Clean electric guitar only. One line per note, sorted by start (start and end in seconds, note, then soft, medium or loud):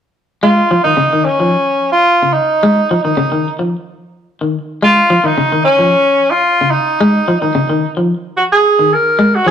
0.43 0.59 G#3 medium
0.71 0.79 F3 medium
0.85 0.93 D#3 medium
0.97 1.06 C#3 medium
1.13 1.29 D#3 medium
1.40 1.56 F3 medium
2.22 2.39 C#3 medium
2.63 2.79 G#3 medium
2.91 2.99 F3 medium
3.05 3.13 D#3 medium
3.17 3.26 C#3 medium
3.32 3.48 D#3 medium
3.59 3.75 F3 medium
4.41 4.58 D#3 medium
4.82 4.99 G#3 medium
5.10 5.18 F3 medium
5.24 5.32 D#3 medium
5.38 5.46 C#3 medium
5.52 5.68 D#3 medium
5.79 5.95 F3 medium
6.61 6.77 C#3 medium
7.01 7.17 G#3 medium
7.28 7.37 F3 medium
7.42 7.50 D#3 medium
7.55 7.64 C#3 medium
7.70 7.86 D#3 medium
7.97 8.13 F3 medium
8.79 8.96 D#3 medium
9.19 9.35 G#3 medium
9.46 9.51 F3 medium